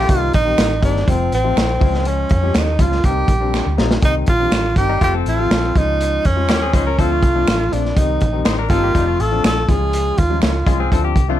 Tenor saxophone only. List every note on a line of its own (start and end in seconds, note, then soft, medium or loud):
0.00 0.11 G4 medium
0.10 0.34 F4 loud
0.35 0.80 D#4 loud
0.85 1.11 D4 medium
1.09 1.33 C4 medium
1.34 2.09 C4 medium
2.07 2.59 C#4 medium
2.58 2.82 D#4 medium
2.81 3.07 F4 medium
3.05 3.79 G4 medium
4.05 4.15 D#4 medium
4.29 4.74 F4 loud
4.77 5.00 G4 loud
5.04 5.14 G4 medium
5.29 5.79 F4 loud
5.78 6.27 D#4 loud
6.25 6.74 C#4 medium
6.76 7.02 C#4 medium
7.00 7.74 F4 loud
7.73 7.98 D4 medium
7.97 8.43 D#4 medium
8.69 9.22 F4 medium
9.20 9.44 A4 medium
9.46 9.70 A4 loud
9.69 10.19 G#4 medium
10.18 10.42 F4 medium
10.43 11.12 F4 medium